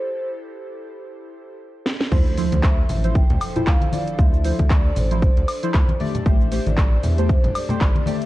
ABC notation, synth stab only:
X:1
M:4/4
L:1/16
Q:"Swing 16ths" 1/4=116
K:Dm
V:1 name="Synth stab"
z16 | [F,Ec] z [F,Ec] z4 [F,Ec] z3 [F,Ec]3 [F,Ed]2 | [F,Ec] z [F,Ec] z4 [F,Ec] z3 [F,Ec]3 [A,Gd]2 | [A,Gc] z [A,Gc] z4 [A,Gc] z3 [A,Gc]3 [A,Gd]2 |]